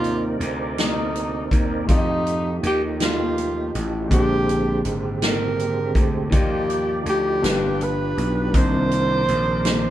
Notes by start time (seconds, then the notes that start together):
Already playing: D#2 C3 C4 D#4 F4 A#4 D5
0.04 closed hi-hat
0.40 D2, closed hi-hat
0.78 D#4, snare, closed hi-hat
1.16 closed hi-hat
1.51 D#2, kick, closed hi-hat
1.86 F2 F3 A3 D#4 F4 G4, kick, closed hi-hat
1.91 D#4 D5
1.95 G4 D#5
2.27 closed hi-hat
2.63 D#2 G4, closed hi-hat
3.00 snare, closed hi-hat
3.04 F4
3.38 closed hi-hat
3.75 A1, closed hi-hat
4.08 A#1 A#2 D3 G#3 C4 G4, kick, closed hi-hat
4.13 D4 G4 C5
4.49 closed hi-hat
4.85 G#1, closed hi-hat
5.22 A#4, snare, closed hi-hat
5.59 closed hi-hat
5.95 D2, kick, closed hi-hat
6.30 D#2 F3 G3 D#4 F4 G4 D5, kick, closed hi-hat
6.36 G4
6.70 closed hi-hat
7.06 D2 G4, closed hi-hat
7.41 G1 G2 F3 G3 A#3 D4 F4 G4 B4, snare, closed hi-hat
7.49 B3
7.81 B4, closed hi-hat
8.17 B1, closed hi-hat
8.51 C2 C3 D#3 A#3 C4 D4 D#4 A#4 D5, kick, closed hi-hat
8.57 C5
8.91 closed hi-hat
9.28 A#1, closed hi-hat
9.65 snare, closed hi-hat